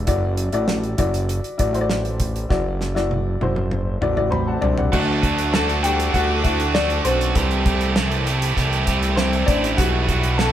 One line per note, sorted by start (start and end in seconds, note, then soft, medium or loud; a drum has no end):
0.07 0.50 F#1 loud
0.07 0.50 E4 medium
0.07 0.50 F#4 medium
0.07 0.51 D5 medium
0.07 kick medium
0.07 closed hi-hat medium
0.37 closed hi-hat medium
0.53 0.95 A1 medium
0.53 0.96 E4 medium
0.53 0.96 F#4 medium
0.53 0.96 D5 medium
0.53 closed hi-hat soft
0.68 snare medium
0.83 closed hi-hat soft
0.97 1.41 F#1 medium
0.97 1.55 E4 medium
0.97 1.56 F#4 medium
0.97 1.56 D5 medium
0.97 kick medium
0.97 closed hi-hat medium
1.14 closed hi-hat medium
1.29 closed hi-hat medium
1.44 closed hi-hat soft
1.58 2.46 A1 medium
1.58 1.71 E4 medium
1.58 1.72 F#4 medium
1.58 1.74 D5 medium
1.58 kick medium
1.58 closed hi-hat medium
1.73 2.45 E4 medium
1.73 2.46 F#4 medium
1.73 1.81 C5 medium
1.73 closed hi-hat soft
1.81 2.49 D5 medium
1.90 snare medium
2.05 closed hi-hat soft
2.20 kick medium
2.20 closed hi-hat medium
2.36 closed hi-hat soft
2.49 3.37 F#1 loud
2.49 2.93 E4 medium
2.49 2.93 F#4 medium
2.49 2.93 D5 medium
2.49 kick medium
2.49 snare soft
2.81 snare soft
2.95 3.38 E4 medium
2.95 3.38 F#4 medium
2.95 3.39 D5 medium
2.95 snare soft
3.11 high tom medium
3.41 3.98 F#1 medium
3.41 3.98 E4 medium
3.41 3.99 F#4 medium
3.41 3.99 C5 medium
3.41 high tom medium
3.56 mid tom medium
3.71 mid tom medium
4.01 4.59 A1 medium
4.01 4.15 E4 medium
4.01 4.15 F#4 medium
4.01 4.16 D5 medium
4.01 mid tom medium
4.16 4.88 E4 medium
4.16 4.88 F#4 medium
4.16 4.32 D5 medium
4.16 mid tom medium
4.30 4.61 C4 medium
4.30 4.63 C5 medium
4.30 4.46 B5 medium
4.30 mid tom medium
4.47 4.76 F#5 soft
4.47 4.76 A5 medium
4.61 4.91 C2 medium
4.61 4.91 D4 medium
4.61 4.77 D5 medium
4.61 floor tom medium
4.78 5.07 D5 soft
4.78 4.90 F#5 medium
4.78 floor tom medium
4.92 6.10 D2 loud
4.92 5.23 D3 medium
4.92 5.33 D3 soft
4.92 5.33 F#3 soft
4.92 5.23 A3 medium
4.92 5.34 A3 medium
4.92 5.23 D4 medium
4.92 5.50 F#4 medium
4.92 5.21 F#4 medium
4.92 9.74 A4 medium
4.92 7.33 D5 medium
4.92 5.55 F#5 medium
4.92 7.33 A5 medium
4.92 7.33 D6 medium
4.92 kick medium
4.92 crash medium
5.23 5.52 A3 soft
5.23 5.53 D4 soft
5.23 5.53 F#4 medium
5.23 kick medium
5.23 closed hi-hat medium
5.38 closed hi-hat soft
5.53 5.84 D3 medium
5.53 5.84 A3 medium
5.53 5.83 D4 medium
5.53 5.82 F#4 medium
5.53 5.82 A4 medium
5.53 5.85 A5 medium
5.53 snare loud
5.69 closed hi-hat soft
5.83 6.13 G3 medium
5.83 6.13 A3 soft
5.83 6.14 D4 soft
5.83 6.14 F#4 medium
5.83 6.15 G5 medium
5.83 closed hi-hat medium
6.00 closed hi-hat medium
6.13 7.01 D2 loud
6.13 6.44 D3 medium
6.13 6.45 A3 medium
6.13 6.44 D4 medium
6.13 6.43 F#4 medium
6.13 6.45 F#5 medium
6.13 kick medium
6.13 closed hi-hat medium
6.44 6.74 A3 soft
6.44 6.75 D4 soft
6.44 6.73 E4 medium
6.44 6.75 F#4 medium
6.44 6.75 E5 medium
6.44 kick medium
6.44 closed hi-hat medium
6.60 closed hi-hat soft
6.74 7.05 D3 medium
6.74 7.05 A3 medium
6.74 7.03 D4 medium
6.74 7.06 D4 medium
6.74 7.04 F#4 medium
6.74 7.06 D5 medium
6.74 snare medium
6.90 closed hi-hat soft
7.04 7.33 B1 medium
7.04 7.35 A3 soft
7.04 8.84 C4 medium
7.04 7.36 D4 medium
7.04 7.36 F#4 medium
7.04 8.83 C5 medium
7.04 closed hi-hat medium
7.21 closed hi-hat soft
7.35 8.53 C2 loud
7.35 8.22 C3 soft
7.35 7.66 C3 medium
7.35 7.66 E3 medium
7.35 8.23 G3 soft
7.35 7.66 A3 medium
7.35 7.66 E4 medium
7.35 7.65 G4 medium
7.35 8.23 B4 medium
7.35 10.52 E5 medium
7.35 9.76 G5 medium
7.35 9.76 A5 medium
7.35 kick medium
7.35 closed hi-hat medium
7.51 closed hi-hat soft
7.66 7.96 A3 soft
7.66 7.97 E4 soft
7.66 7.96 G4 medium
7.66 kick medium
7.66 closed hi-hat medium
7.81 closed hi-hat soft
7.96 8.27 C3 medium
7.96 8.27 E3 medium
7.96 8.27 A3 medium
7.96 8.26 E4 medium
7.96 8.25 G4 medium
7.96 snare loud
8.11 closed hi-hat soft
8.26 8.56 A3 soft
8.26 8.57 E4 medium
8.26 8.57 G4 medium
8.26 closed hi-hat medium
8.42 snare soft
8.42 closed hi-hat medium
8.56 9.44 C2 medium
8.56 8.87 E3 medium
8.56 8.87 A3 medium
8.56 8.87 E4 medium
8.56 8.85 G4 medium
8.56 kick medium
8.56 closed hi-hat medium
8.73 closed hi-hat soft
8.87 9.17 A3 soft
8.87 9.17 E4 soft
8.87 9.17 G4 medium
8.87 kick medium
8.87 closed hi-hat medium
9.03 closed hi-hat soft
9.16 9.48 C3 medium
9.16 9.48 E3 medium
9.16 9.48 A3 medium
9.16 9.46 C4 medium
9.16 9.48 E4 medium
9.16 9.47 G4 medium
9.16 9.48 C5 medium
9.16 snare medium
9.33 closed hi-hat soft
9.46 9.76 A1 medium
9.46 9.78 A3 soft
9.46 9.77 D4 medium
9.46 9.78 E4 medium
9.46 9.78 G4 medium
9.46 9.78 D5 medium
9.46 kick medium
9.46 closed hi-hat medium
9.64 closed hi-hat soft
9.77 10.52 B1 medium
9.77 10.09 B2 medium
9.77 10.52 E3 soft
9.77 10.09 E3 medium
9.77 10.52 G3 soft
9.77 10.52 G3 medium
9.77 10.09 G3 medium
9.77 10.52 E4 medium
9.77 10.08 E4 medium
9.77 10.35 F#4 medium
9.77 10.07 F#4 medium
9.77 10.40 F#5 medium
9.77 10.52 B5 medium
9.77 kick medium
9.77 closed hi-hat medium
10.08 10.38 G3 soft
10.08 10.38 E4 soft
10.08 10.39 F#4 medium
10.08 kick medium
10.08 closed hi-hat medium
10.23 closed hi-hat soft
10.38 10.52 B2 medium
10.38 10.52 E3 medium
10.38 10.52 G3 medium
10.38 10.52 E4 medium
10.38 10.52 F#4 medium
10.38 10.52 A4 medium
10.38 10.52 A5 medium
10.38 snare loud